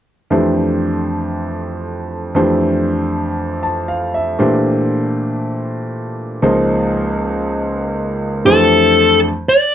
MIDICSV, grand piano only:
0, 0, Header, 1, 2, 480
1, 0, Start_track
1, 0, Key_signature, -1, "major"
1, 0, Tempo, 509771
1, 289, Time_signature, 4, 2, 24, 8
1, 9178, End_track
2, 0, Start_track
2, 0, Title_t, "Grand piano"
2, 0, Program_c, 0, 0
2, 287, Note_on_c, 0, 41, 55
2, 289, Note_on_c, 0, 57, 50
2, 290, Note_on_c, 0, 52, 48
2, 294, Note_on_c, 0, 62, 47
2, 296, Note_on_c, 0, 67, 47
2, 298, Note_on_c, 0, 72, 59
2, 2172, Note_off_c, 0, 41, 0
2, 2174, Note_off_c, 0, 52, 0
2, 2174, Note_off_c, 0, 57, 0
2, 2176, Note_off_c, 0, 62, 0
2, 2177, Note_off_c, 0, 67, 0
2, 2178, Note_off_c, 0, 72, 0
2, 2209, Note_on_c, 0, 41, 58
2, 2212, Note_on_c, 0, 52, 52
2, 2217, Note_on_c, 0, 57, 50
2, 2218, Note_on_c, 0, 62, 52
2, 2223, Note_on_c, 0, 67, 50
2, 2225, Note_on_c, 0, 72, 62
2, 3416, Note_on_c, 0, 81, 55
2, 3637, Note_off_c, 0, 81, 0
2, 3656, Note_on_c, 0, 77, 52
2, 3878, Note_off_c, 0, 77, 0
2, 3901, Note_on_c, 0, 76, 58
2, 4093, Note_off_c, 0, 41, 0
2, 4095, Note_off_c, 0, 52, 0
2, 4097, Note_off_c, 0, 57, 0
2, 4098, Note_off_c, 0, 62, 0
2, 4101, Note_off_c, 0, 67, 0
2, 4102, Note_off_c, 0, 72, 0
2, 4120, Note_off_c, 0, 76, 0
2, 4129, Note_on_c, 0, 52, 52
2, 4130, Note_on_c, 0, 46, 58
2, 4135, Note_on_c, 0, 57, 53
2, 4136, Note_on_c, 0, 62, 57
2, 4139, Note_on_c, 0, 67, 53
2, 4141, Note_on_c, 0, 72, 64
2, 6013, Note_off_c, 0, 46, 0
2, 6013, Note_off_c, 0, 52, 0
2, 6016, Note_off_c, 0, 57, 0
2, 6016, Note_off_c, 0, 62, 0
2, 6018, Note_off_c, 0, 67, 0
2, 6019, Note_off_c, 0, 72, 0
2, 6048, Note_on_c, 0, 37, 56
2, 6048, Note_on_c, 0, 53, 53
2, 6049, Note_on_c, 0, 58, 56
2, 6054, Note_on_c, 0, 63, 50
2, 6055, Note_on_c, 0, 68, 55
2, 6058, Note_on_c, 0, 72, 69
2, 7931, Note_off_c, 0, 37, 0
2, 7931, Note_off_c, 0, 53, 0
2, 7931, Note_off_c, 0, 58, 0
2, 7933, Note_off_c, 0, 63, 0
2, 7934, Note_off_c, 0, 68, 0
2, 7936, Note_off_c, 0, 72, 0
2, 7968, Note_on_c, 0, 41, 60
2, 7970, Note_on_c, 0, 62, 55
2, 7973, Note_on_c, 0, 52, 54
2, 7973, Note_on_c, 0, 57, 55
2, 7974, Note_on_c, 0, 67, 55
2, 7977, Note_on_c, 0, 72, 66
2, 8735, Note_off_c, 0, 41, 0
2, 8736, Note_off_c, 0, 62, 0
2, 8737, Note_off_c, 0, 52, 0
2, 8737, Note_off_c, 0, 57, 0
2, 8738, Note_off_c, 0, 67, 0
2, 8739, Note_off_c, 0, 72, 0
2, 9178, End_track
0, 0, End_of_file